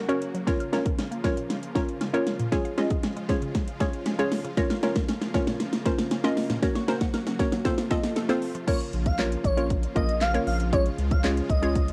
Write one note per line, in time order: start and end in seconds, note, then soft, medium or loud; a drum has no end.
0.00 4.54 C#3 medium
0.00 0.45 F#3 medium
0.00 2.48 A#3 medium
0.00 0.45 F#4 medium
0.09 0.41 C#4 medium
0.09 0.18 C#4 medium
0.09 0.41 F#4 medium
0.09 0.41 A#4 medium
0.09 0.41 C#5 medium
0.09 closed hi-hat medium
0.22 closed hi-hat medium
0.34 0.43 F#3 medium
0.34 closed hi-hat medium
0.47 6.59 F3 medium
0.47 0.68 C#4 medium
0.47 0.69 F4 medium
0.47 6.59 F4 medium
0.47 0.69 A#4 medium
0.47 0.69 C#5 loud
0.47 0.56 A#6 loud
0.47 kick loud
0.47 snare medium
0.47 closed hi-hat loud
0.60 0.69 F6 medium
0.60 closed hi-hat medium
0.73 1.16 C#4 medium
0.73 1.16 F4 medium
0.73 1.16 A#4 medium
0.73 1.16 C#5 medium
0.73 0.82 A#5 loud
0.73 snare medium
0.73 closed hi-hat medium
0.85 0.95 A#4 medium
0.85 kick loud
0.85 closed hi-hat medium
0.98 1.07 C#4 medium
0.98 snare medium
0.98 closed hi-hat medium
1.11 1.20 A#3 medium
1.11 closed hi-hat medium
1.24 1.33 F3 medium
1.24 1.67 C#4 medium
1.24 1.67 F4 medium
1.24 1.67 A#4 medium
1.24 1.67 C#5 medium
1.24 kick medium
1.24 snare medium
1.24 closed hi-hat medium
1.37 1.46 A#2 medium
1.37 closed hi-hat medium
1.50 snare medium
1.50 closed hi-hat medium
1.63 closed hi-hat medium
1.75 2.07 C#4 medium
1.75 2.08 F4 medium
1.75 2.08 A#4 medium
1.75 2.08 C#5 medium
1.75 1.84 A#5 medium
1.75 kick medium
1.75 snare medium
1.75 closed hi-hat medium
1.89 closed hi-hat medium
2.01 2.10 C#4 medium
2.01 snare medium
2.01 closed hi-hat medium
2.13 2.23 A#3 medium
2.13 2.46 C#4 medium
2.13 2.46 F4 medium
2.13 2.46 A#4 medium
2.13 2.46 C#5 medium
2.13 closed hi-hat medium
2.27 snare medium
2.27 closed hi-hat medium
2.39 2.48 A#2 medium
2.39 closed hi-hat medium
2.52 2.74 C#4 medium
2.52 2.74 F4 medium
2.52 2.74 G#4 medium
2.52 2.74 C#5 loud
2.52 2.61 G#5 loud
2.52 kick loud
2.52 snare medium
2.52 closed hi-hat loud
2.65 2.74 F5 medium
2.65 closed hi-hat medium
2.78 3.21 C#4 medium
2.78 3.21 F4 medium
2.78 3.21 G#4 medium
2.78 2.87 C#5 medium
2.78 3.21 D#5 medium
2.78 snare medium
2.78 closed hi-hat medium
2.90 3.00 G#4 medium
2.90 kick medium
2.90 closed hi-hat medium
3.03 3.12 C#4 medium
3.03 snare loud
3.03 closed hi-hat medium
3.16 3.25 G#3 medium
3.16 closed hi-hat medium
3.29 3.38 F3 medium
3.29 3.72 C#4 medium
3.29 3.72 F4 medium
3.29 3.72 G#4 medium
3.29 3.72 C#5 loud
3.29 kick medium
3.29 snare medium
3.29 closed hi-hat medium
3.42 3.51 C#3 medium
3.42 closed hi-hat medium
3.55 kick medium
3.55 snare medium
3.55 closed hi-hat medium
3.68 closed hi-hat medium
3.80 4.13 C#4 medium
3.80 4.13 F4 medium
3.80 4.13 G#4 medium
3.80 3.89 C#5 medium
3.80 4.13 C#5 loud
3.80 kick loud
3.80 snare loud
3.80 closed hi-hat medium
3.93 closed hi-hat medium
4.06 4.15 C#4 medium
4.06 snare loud
4.06 closed hi-hat medium
4.19 4.28 G#3 medium
4.19 4.51 C#4 medium
4.19 4.51 F4 medium
4.19 4.51 G#4 medium
4.19 4.51 C#5 loud
4.19 closed hi-hat medium
4.32 snare loud
4.32 open hi-hat medium
4.45 4.54 C#3 medium
4.45 closed hi-hat medium
4.57 7.62 A#3 medium
4.57 4.79 C#4 medium
4.57 4.79 F4 medium
4.57 4.79 A#4 medium
4.57 4.79 C#5 loud
4.57 4.66 A#6 loud
4.57 kick loud
4.57 snare loud
4.57 closed hi-hat loud
4.70 4.79 F6 medium
4.70 snare loud
4.70 closed hi-hat medium
4.83 5.26 C#4 medium
4.83 5.26 F4 medium
4.83 5.26 A#4 medium
4.83 5.26 C#5 medium
4.83 4.92 A#5 loud
4.83 snare loud
4.83 closed hi-hat medium
4.96 5.05 A#4 medium
4.96 kick loud
4.96 snare loud
4.96 closed hi-hat medium
5.08 5.18 C#4 medium
5.08 snare loud
5.08 closed hi-hat medium
5.21 5.30 A#3 medium
5.21 snare loud
5.21 closed hi-hat medium
5.34 5.43 F3 medium
5.34 5.77 C#4 medium
5.34 5.77 F4 medium
5.34 5.77 A#4 medium
5.34 5.77 C#5 loud
5.34 kick medium
5.34 snare loud
5.34 closed hi-hat medium
5.47 5.56 A#2 medium
5.47 snare loud
5.47 closed hi-hat medium
5.60 snare loud
5.60 closed hi-hat medium
5.73 snare loud
5.73 closed hi-hat medium
5.85 6.18 C#4 medium
5.85 6.18 F4 medium
5.85 6.18 A#4 medium
5.85 6.18 C5 medium
5.85 5.94 A#5 medium
5.85 kick loud
5.85 snare loud
5.85 closed hi-hat medium
5.98 snare loud
5.98 closed hi-hat medium
6.11 6.20 C#4 medium
6.11 snare loud
6.11 closed hi-hat medium
6.24 6.33 A#3 medium
6.24 6.56 C#4 medium
6.24 6.56 F4 medium
6.24 6.56 A#4 medium
6.24 6.57 D#5 loud
6.24 snare loud
6.24 closed hi-hat medium
6.37 snare loud
6.37 open hi-hat medium
6.50 6.59 A#2 medium
6.50 snare loud
6.50 closed hi-hat medium
6.62 7.64 F#3 medium
6.62 6.84 C#4 medium
6.62 6.84 F#4 medium
6.62 7.64 F#4 medium
6.62 6.84 A#4 medium
6.62 6.84 C#5 loud
6.62 6.71 A#6 loud
6.62 kick loud
6.62 snare loud
6.62 closed hi-hat loud
6.75 6.84 C#6 medium
6.75 snare loud
6.75 closed hi-hat medium
6.88 7.31 C#4 medium
6.88 7.31 F#4 medium
6.88 7.31 A#4 medium
6.88 7.31 C5 loud
6.88 6.97 A#5 medium
6.88 snare loud
6.88 closed hi-hat medium
7.01 7.10 F#5 medium
7.01 kick medium
7.01 snare loud
7.01 closed hi-hat medium
7.14 7.23 A#4 medium
7.14 snare loud
7.14 closed hi-hat medium
7.27 7.36 C#4 medium
7.27 snare loud
7.27 closed hi-hat medium
7.39 7.48 A#3 medium
7.39 7.65 C#4 medium
7.39 7.65 F#4 medium
7.39 7.65 A#4 medium
7.39 7.65 C#5 medium
7.39 kick loud
7.39 snare loud
7.39 closed hi-hat medium
7.52 7.61 F#3 medium
7.52 snare loud
7.52 closed hi-hat medium
7.65 8.67 C3 medium
7.65 8.67 F3 medium
7.65 8.67 A3 medium
7.65 7.86 C4 medium
7.65 7.87 F4 medium
7.65 8.67 F4 medium
7.65 7.87 A4 medium
7.65 7.87 C5 loud
7.65 kick medium
7.65 snare loud
7.65 closed hi-hat medium
7.78 snare loud
7.78 closed hi-hat medium
7.90 8.23 C4 medium
7.90 8.23 F4 medium
7.90 8.23 A4 medium
7.90 8.23 D#5 loud
7.90 8.00 A5 loud
7.90 kick loud
7.90 snare loud
7.90 closed hi-hat medium
8.04 snare loud
8.04 closed hi-hat medium
8.16 8.25 A4 medium
8.16 snare loud
8.16 closed hi-hat medium
8.29 8.61 C4 medium
8.29 8.38 C4 medium
8.29 8.61 F4 medium
8.29 8.61 A4 medium
8.29 8.62 C5 loud
8.29 snare loud
8.29 closed hi-hat medium
8.42 open hi-hat medium
8.55 8.64 F3 medium
8.55 closed hi-hat medium
8.67 11.93 F3 medium
8.67 9.10 A#3 medium
8.67 9.11 C#4 medium
8.67 9.11 F4 medium
8.67 9.11 A#4 medium
8.67 8.77 C#5 loud
8.67 9.11 C#5 medium
8.67 kick loud
8.67 closed hi-hat loud
8.67 crash loud
8.81 closed hi-hat medium
8.93 9.36 A#1 loud
8.93 closed hi-hat medium
9.06 9.16 F5 medium
9.06 kick loud
9.06 closed hi-hat medium
9.19 9.51 A#3 medium
9.19 9.51 C#4 medium
9.19 9.51 F4 medium
9.19 9.51 A#4 medium
9.19 9.51 C#5 medium
9.19 snare medium
9.19 clap loud
9.19 closed hi-hat medium
9.32 closed hi-hat medium
9.44 9.87 A#1 medium
9.44 9.63 C#5 medium
9.44 kick medium
9.44 closed hi-hat medium
9.57 9.90 A#3 medium
9.57 9.90 C#4 medium
9.57 9.90 F4 medium
9.57 9.90 A#4 medium
9.57 9.90 C#5 medium
9.57 closed hi-hat medium
9.70 kick medium
9.70 closed hi-hat medium
9.83 closed hi-hat medium
9.96 10.39 A#1 loud
9.96 10.28 A#3 medium
9.96 10.28 C#4 medium
9.96 10.28 F4 medium
9.96 10.28 A#4 medium
9.96 10.15 D#5 medium
9.96 10.28 D#5 medium
9.96 kick loud
9.96 closed hi-hat medium
10.09 closed hi-hat medium
10.21 10.31 F5 medium
10.21 snare medium
10.21 clap loud
10.21 closed hi-hat medium
10.34 10.66 A#3 medium
10.34 10.67 C#4 medium
10.34 10.67 F4 medium
10.34 10.67 A#4 medium
10.34 10.67 C#5 medium
10.34 closed hi-hat medium
10.47 10.90 A#1 medium
10.47 10.56 F5 medium
10.47 open hi-hat medium
10.60 closed hi-hat medium
10.73 11.16 G#3 medium
10.73 11.93 G#3 medium
10.73 11.16 C#4 medium
10.73 11.16 F4 medium
10.73 11.16 G#4 medium
10.73 10.82 C#5 loud
10.73 11.16 C#5 medium
10.73 kick loud
10.73 closed hi-hat loud
10.86 closed hi-hat medium
10.98 11.41 C#2 loud
10.98 closed hi-hat medium
11.11 11.20 F5 medium
11.11 kick loud
11.11 closed hi-hat medium
11.24 11.56 G#3 medium
11.24 11.56 C#4 medium
11.24 11.56 F4 medium
11.24 11.56 G#4 medium
11.24 11.56 C#5 medium
11.24 snare loud
11.24 clap loud
11.24 closed hi-hat medium
11.37 closed hi-hat medium
11.50 11.92 C#2 medium
11.50 11.86 D#5 medium
11.50 kick medium
11.50 closed hi-hat medium
11.62 11.93 G#3 medium
11.62 11.93 C#4 medium
11.62 11.93 F4 medium
11.62 11.93 G#4 medium
11.62 11.93 C#5 medium
11.62 closed hi-hat medium
11.75 kick medium
11.75 closed hi-hat medium
11.88 closed hi-hat medium